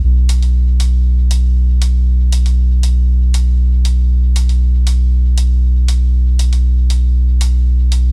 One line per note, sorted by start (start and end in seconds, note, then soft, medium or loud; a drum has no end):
0.04 8.12 B1 medium
0.29 open hi-hat medium
0.42 open hi-hat soft
0.80 open hi-hat medium
1.31 open hi-hat medium
1.82 open hi-hat medium
2.32 open hi-hat medium
2.46 open hi-hat soft
2.83 open hi-hat medium
3.34 open hi-hat medium
3.85 open hi-hat medium
4.36 open hi-hat medium
4.49 open hi-hat soft
4.87 open hi-hat medium
5.38 open hi-hat medium
5.88 open hi-hat medium
6.39 open hi-hat medium
6.53 open hi-hat soft
6.90 open hi-hat medium
7.41 open hi-hat medium
7.92 open hi-hat medium